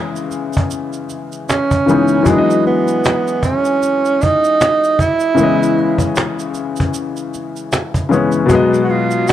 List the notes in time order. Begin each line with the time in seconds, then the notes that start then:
Already playing: C#3 E3 G#3 B3 D#5
0.16 shaker
0.31 cajon slap, shaker
0.53 cajon bass, shaker
0.71 cajon slap, shaker
0.93 shaker
1.10 cajon slap, shaker
1.32 shaker
1.49 C#4, cajon slap, shaker
1.71 cajon bass, shaker
1.86 C#3 E3 G#3 B3, cajon slap, shaker
1.91 D#4
2.08 shaker
2.23 E3 F#3, cajon bass, shaker
2.27 G#3 B3 D#4
2.32 D4
2.38 D#5
2.50 shaker
2.66 B3, cajon slap
2.88 shaker
3.04 cajon slap, shaker
3.28 shaker
3.43 C#4, cajon bass, shaker
3.65 shaker
3.83 cajon slap, shaker
4.05 shaker
4.21 D#4, cajon bass, shaker
4.44 shaker
4.61 cajon slap, shaker
4.84 shaker
4.99 E4, cajon bass, shaker
5.20 shaker
5.34 C#3 E3, shaker
5.39 G#3 B3, cajon slap
5.43 D#5
5.63 shaker
5.77 cajon slap
5.98 cajon bass, shaker
6.16 cajon slap, shaker
6.39 shaker
6.54 cajon slap, shaker
6.76 cajon bass, shaker
6.94 cajon slap, shaker
7.17 shaker
7.34 cajon slap, shaker
7.56 shaker
7.72 cajon slap, shaker
7.94 cajon bass, shaker
8.09 C#3 E3 G#3 B3, cajon slap, shaker
8.13 C#4
8.32 cajon slap, shaker
8.46 B2 F#3, cajon bass, shaker
8.50 G#3 B3
8.55 D#5
8.74 shaker
8.84 F#4
8.89 F4, cajon slap
9.11 shaker
9.28 F#4, cajon slap, shaker